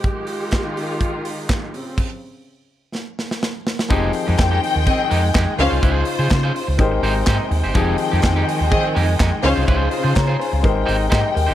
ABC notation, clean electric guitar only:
X:1
M:4/4
L:1/16
Q:1/4=125
K:Fm
V:1 name="Clean electric guitar"
z16 | z16 | [A,EG]2 z [A,EG] z [A,EG] z4 [A,EG] z [A,EG] z2 [FAc] | [FAc]2 z [FAc] z [FAc] z4 [EGc] z [EGc] z2 [EGc] |
[A,EG]2 z [A,EG] z [A,EG] z4 [A,EG] z [A,EG] z2 [FAc] | [FAc]2 z [FAc] z [FAc] z4 [EGc] z [EGc] z2 [EGc] |]